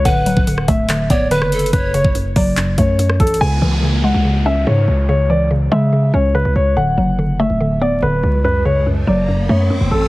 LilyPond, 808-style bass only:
\new Staff \with { instrumentName = "808-style bass" } { \clef bass \time 4/4 \key cis \phrygian \tempo 4 = 143 d,,8. d,,8. d,,4 d,,8. fis,,8. | fis,,8. fis,,8. fis,,4 fis,4 a,,8 | cis,8 cis,4~ cis,16 cis,4~ cis,16 gis,8 cis,8~ | cis,4. cis4 cis,8. cis,16 cis,8 |
d,,8 fis,,4~ fis,,16 d,,4~ d,,16 d,,8 cis,8~ | cis,4. fis,,4 fis,8. fis,,16 a,,8 | }